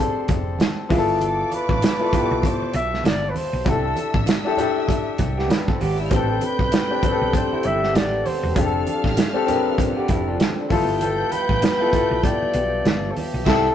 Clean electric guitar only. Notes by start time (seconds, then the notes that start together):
5.38 B3 G4
5.50 D4 B4
5.68 C4 A4
5.81 B3 G4
6.00 G3 E4
7.34 D4
7.52 G3 E4
7.83 B3 G4
9.79 C4 A4
9.97 B3 G4
10.10 G3 E4
10.28 F3 D4
13.47 G3 E4